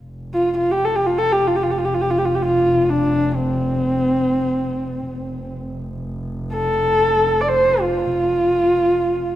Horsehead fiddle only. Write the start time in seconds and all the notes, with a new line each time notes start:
0.34 F4
0.57 F4
0.71 G4
0.85 A4
0.95 G4
1.06 F4
1.18 A4
1.32 G4
1.47 F4
1.56 G4
1.63 F4
1.71 G4
1.78 F4
1.85 G4
1.94 F4
2.01 G4
2.10 F4
2.18 G4
2.25 F4
2.35 G4
2.42 F4
2.81 F4
2.89 D4
3.35 C4
6.53 A4
7.41 D5
7.49 C5
7.82 F4